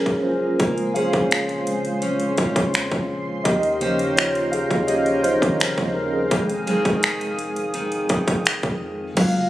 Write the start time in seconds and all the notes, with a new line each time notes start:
Already playing: F#3 A#3 C#4 F4 G#4 A#4 C5 F5 A#5
0.06 F#1, kick, closed hi-hat
0.23 F4 C5
0.59 A#1 C#3 G#3 A#3 C4 C5 C6, kick, closed hi-hat
0.78 closed hi-hat
0.94 C#4 G#4 C5 F5, closed hi-hat
1.13 A#1, kick, closed hi-hat
1.31 finger snap, closed hi-hat
1.49 closed hi-hat
1.66 C#3 G#3 C4, closed hi-hat
1.85 closed hi-hat
2.02 C#4, closed hi-hat
2.20 closed hi-hat
2.38 A#1 C#4, kick, closed hi-hat
2.56 kick, closed hi-hat
2.74 F2, finger snap, closed hi-hat
2.91 A#1, kick, closed hi-hat
3.44 D#2 D#3 G4 D#5 F5 G5 A#5, kick, closed hi-hat
3.63 closed hi-hat
3.80 C#3 F3 A#3 C#4 G4 C5, closed hi-hat
3.99 closed hi-hat
4.16 F4 C#5, finger snap, closed hi-hat
4.35 closed hi-hat
4.52 G#4 F5, closed hi-hat
4.71 D#2, kick, closed hi-hat
4.87 C#4 G4 D#5, closed hi-hat
5.06 closed hi-hat
5.23 C#4 D#4 C5, closed hi-hat
5.42 D#3, kick, closed hi-hat
5.59 C#3 F3 G3 C4, finger snap, closed hi-hat
5.78 D#2, kick, closed hi-hat
5.95 C#4 A#4
6.13 C4 G#4
6.31 F1 F2 D#3 G#3 C4 G#4 D#6, kick, closed hi-hat
6.50 closed hi-hat
6.67 D#3 G#3 C4, closed hi-hat
6.85 F1, kick, closed hi-hat
7.03 finger snap, closed hi-hat
7.21 closed hi-hat
7.39 closed hi-hat
7.56 closed hi-hat
7.74 D#3, closed hi-hat
7.92 closed hi-hat
8.09 F1 D#3, kick, closed hi-hat
8.28 kick, closed hi-hat
8.46 finger snap, closed hi-hat
8.63 F2, kick, closed hi-hat
9.14 F#1 C#3 F#3 G#3 G#4 F5 A#5, kick, closed hi-hat, crash
9.18 A#3 F4 F5